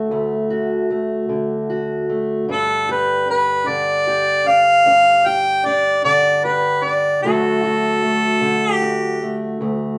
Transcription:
0.00 1.28 D3 medium
0.00 2.49 F#3 medium
0.00 0.10 A3 medium
0.00 0.49 F#4 medium
0.11 2.48 D2 medium
0.11 0.89 A3 medium
0.50 1.69 F#4 medium
0.91 2.08 A3 medium
1.29 3.66 D3 medium
1.70 2.44 F#4 medium
2.10 2.49 A3 medium
2.49 4.85 G2 medium
2.49 3.28 D4 medium
2.49 2.87 A4 medium
2.89 4.06 G4 medium
2.89 3.27 B4 medium
3.29 4.46 D4 medium
3.29 3.69 B4 medium
3.67 6.04 D3 medium
3.67 4.49 D5 medium
4.07 5.25 G4 medium
4.47 4.86 D4 medium
4.47 5.28 F5 loud
4.86 7.19 G2 medium
4.86 5.66 D4 medium
5.26 6.44 G4 medium
5.26 5.67 G5 loud
5.66 6.84 D4 medium
5.66 6.03 D5 medium
6.04 7.23 D3 medium
6.04 6.45 D5 loud
6.44 7.19 G4 medium
6.44 6.85 B4 medium
6.83 7.25 D4 medium
6.83 7.22 D5 medium
7.22 9.59 D2 medium
7.22 8.40 D3 medium
7.22 9.98 F#3 medium
7.22 8.01 A3 medium
7.22 8.73 A4 medium
7.26 7.63 F#4 medium
7.64 8.80 F#4 medium
8.03 9.21 A3 medium
8.41 9.98 D3 medium
8.73 9.57 G4 medium
8.82 9.98 F#4 medium
9.22 9.60 A3 soft
9.61 9.98 D2 medium
9.61 9.98 A3 medium

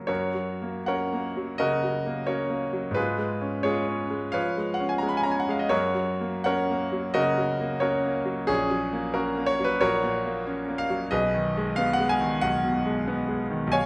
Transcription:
0.00 0.12 C#3 soft
0.00 0.12 F#3 soft
0.00 0.12 A#3 soft
0.00 0.08 A#4 soft
0.07 1.57 F#2 medium
0.07 0.85 F#4 medium
0.07 0.85 A#4 medium
0.07 0.86 C#5 medium
0.35 0.78 F#3 soft
0.62 1.04 A#3 soft
0.86 1.28 C#4 soft
0.86 1.56 A#4 medium
0.86 1.56 C#5 medium
0.86 1.59 F#5 medium
1.13 1.51 A#3 soft
1.37 1.74 F#3 soft
1.58 1.97 C#3 soft
1.58 2.24 F#4 medium
1.58 2.24 A#4 medium
1.58 2.27 D#5 medium
1.84 2.20 F#3 soft
2.06 2.42 A#3 soft
2.27 2.64 C#4 soft
2.27 2.92 F#4 soft
2.27 2.92 A#4 medium
2.27 2.95 C#5 medium
2.50 2.87 A#3 soft
2.73 2.96 F#3 medium
2.91 4.29 G#2 medium
2.91 3.65 B4 medium
2.96 3.62 F4 medium
2.96 3.62 G#4 medium
3.18 3.56 G#3 soft
3.41 3.79 C#4 soft
3.63 4.03 G#3 medium
3.63 4.30 F4 medium
3.63 4.30 G#4 medium
3.63 4.32 C#5 medium
3.88 4.26 C#4 medium
4.10 4.48 G#3 soft
4.32 4.71 F3 medium
4.32 4.72 B4 medium
4.32 4.72 C#5 medium
4.32 4.75 F5 medium
4.57 4.94 G#3 soft
4.74 4.89 F#5 medium
4.80 5.16 C#4 medium
4.89 5.01 G#5 medium
4.98 5.39 G#3 soft
4.98 5.09 A#5 medium
5.08 5.18 B5 medium
5.17 5.25 G#5 medium
5.23 5.62 C#4 soft
5.23 5.32 A#5 medium
5.31 5.41 G#5 medium
5.40 5.50 F#5 medium
5.49 5.72 G#3 medium
5.49 5.61 F5 medium
5.59 5.71 D#5 medium
5.69 7.10 F#2 medium
5.69 6.41 F#4 medium
5.69 6.41 A#4 medium
5.69 6.44 C#5 medium
5.95 6.35 F#3 soft
6.21 6.60 A#3 soft
6.44 6.83 C#4 medium
6.44 7.11 A#4 medium
6.44 7.11 C#5 medium
6.44 7.14 F#5 medium
6.70 7.06 A#3 medium
6.92 7.29 F#3 soft
7.14 7.51 C#3 medium
7.14 7.78 F#4 medium
7.14 7.78 A#4 medium
7.14 7.82 D#5 medium
7.37 7.73 F#3 medium
7.60 7.96 A#3 medium
7.80 8.17 C#4 medium
7.80 8.44 F#4 medium
7.80 8.45 A#4 medium
7.80 8.48 C#5 medium
8.05 8.40 A#3 soft
8.25 8.48 F#3 medium
8.47 9.76 A#1 medium
8.47 9.11 C#4 medium
8.47 9.14 G#4 medium
8.70 9.06 F#3 medium
8.93 9.28 A#3 medium
9.14 9.45 C#4 medium
9.14 9.45 F#4 medium
9.14 9.47 A#4 medium
9.37 9.72 A#3 medium
9.46 9.63 C#5 medium
9.59 9.94 F#3 medium
9.64 9.80 B4 medium
9.81 11.08 A#1 medium
9.81 10.75 F#4 medium
9.81 10.75 A#4 medium
9.81 10.78 C#5 medium
10.04 10.38 A#2 medium
10.25 10.60 A#3 medium
10.47 10.81 C#4 medium
10.68 11.03 A#3 medium
10.78 11.11 F5 medium
10.90 11.12 F#3 medium
11.11 12.38 B1 medium
11.11 11.73 G#4 medium
11.11 11.73 B4 medium
11.11 11.77 D#5 medium
11.34 11.69 D#3 medium
11.57 11.91 G#3 medium
11.76 12.12 B3 medium
11.76 11.93 F5 loud
11.93 12.10 F#5 medium
12.00 12.34 G#3 medium
12.09 12.42 G#5 medium
12.21 12.55 D#3 medium
12.41 13.66 B1 medium
12.41 13.72 F#5 loud
12.64 12.98 B2 soft
12.86 13.21 G#3 medium
13.07 13.42 B3 medium
13.28 13.64 G#3 medium
13.50 13.72 D#3 medium
13.67 13.86 B1 medium
13.72 13.86 C#5 medium
13.72 13.86 F5 medium
13.72 13.86 G#5 medium

